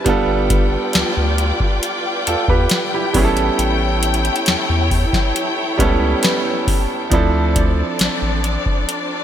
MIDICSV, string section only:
0, 0, Header, 1, 2, 480
1, 0, Start_track
1, 0, Tempo, 882353
1, 32, Time_signature, 4, 2, 24, 8
1, 5025, End_track
2, 0, Start_track
2, 0, Title_t, "String section"
2, 0, Program_c, 0, 48
2, 0, Note_on_c, 0, 71, 78
2, 31, Note_on_c, 0, 74, 83
2, 31, Note_on_c, 0, 79, 95
2, 32, Note_on_c, 0, 65, 88
2, 1692, Note_off_c, 0, 71, 0
2, 1695, Note_off_c, 0, 65, 0
2, 1695, Note_off_c, 0, 74, 0
2, 1714, Note_on_c, 0, 64, 80
2, 1715, Note_on_c, 0, 69, 73
2, 1716, Note_on_c, 0, 73, 73
2, 3850, Note_off_c, 0, 79, 0
2, 3851, Note_off_c, 0, 64, 0
2, 3852, Note_off_c, 0, 73, 0
2, 3872, Note_on_c, 0, 74, 94
2, 3874, Note_on_c, 0, 60, 76
2, 3874, Note_on_c, 0, 62, 82
2, 5025, Note_off_c, 0, 60, 0
2, 5025, Note_off_c, 0, 62, 0
2, 5025, Note_off_c, 0, 69, 0
2, 5025, Note_off_c, 0, 74, 0
2, 5025, End_track
0, 0, End_of_file